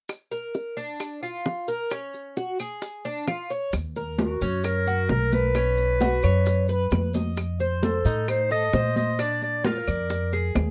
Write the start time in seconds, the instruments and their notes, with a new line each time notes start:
0.09 high bongo, claves, maracas
0.31 cuban tres A#4, high bongo, maracas
0.54 high bongo, maracas
0.77 cuban tres D4, high bongo, maracas
1.00 high bongo, claves, maracas
1.23 cuban tres F4, high bongo, maracas
1.45 high bongo, low bongo, maracas
1.68 cuban tres A#4, maracas
1.90 cuban tres C#4, high bongo, claves, maracas
2.14 high bongo, maracas
2.37 cuban tres F#4, high bongo, maracas
2.59 cuban tres G#4, high bongo, claves, maracas
2.82 high bongo, maracas
3.05 cuban tres D4, high bongo, maracas
3.28 cuban tres F4, high bongo, low bongo, claves, maracas
3.50 cuban tres C#5, maracas
3.73 upright bass D#2, high bongo, high conga, claves, maracas
3.96 cuban tres A#4, high bongo, high conga, maracas
4.18 clarinet F#4, high bongo, high conga, maracas
4.41 upright bass F#2, cuban tres C#4, high bongo, high conga, maracas
4.64 clarinet A#4, high bongo, high conga, claves, maracas
4.87 cuban tres F#4, high bongo, high conga, maracas
5.09 upright bass B1, cuban tres A#4, clarinet A#4, high bongo, low bongo, high conga, maracas
5.32 clarinet B4, high conga, maracas
5.55 cuban tres C#4, high bongo, high conga, claves, maracas
5.77 high bongo, high conga, maracas
6.00 cuban tres F#4, high bongo, high conga, maracas
6.23 upright bass F#2, cuban tres C#5, high bongo, high conga, claves, maracas
6.46 high bongo, high conga, maracas
6.68 cuban tres B4, high bongo, high conga, maracas
6.91 upright bass F2, high bongo, low bongo, high conga, claves, maracas
7.14 cuban tres D#5, high conga, maracas
7.37 high bongo, high conga, claves, maracas
7.60 cuban tres C5, high bongo, high conga, maracas
7.83 clarinet A4, high bongo, high conga, maracas
8.05 upright bass A2, cuban tres D#4, high bongo, high conga, maracas
8.28 clarinet C5, high bongo, high conga, claves, maracas
8.51 cuban tres A4, clarinet D#5, high bongo, high conga, maracas
8.73 upright bass A#2, cuban tres C5, high bongo, low bongo, high conga, maracas
8.96 clarinet D#5, high conga, maracas
9.19 cuban tres D4, clarinet D5, high bongo, high conga, claves, maracas
9.42 clarinet D5, high bongo, high conga, maracas
9.64 cuban tres F4, clarinet A#4, high bongo, high conga, maracas
9.87 upright bass F2, cuban tres D5, high bongo, high conga, claves, maracas
10.10 high bongo, high conga, maracas
10.32 cuban tres G#4, high bongo, high conga, maracas
10.55 upright bass D#2, high bongo, low bongo, high conga, claves, maracas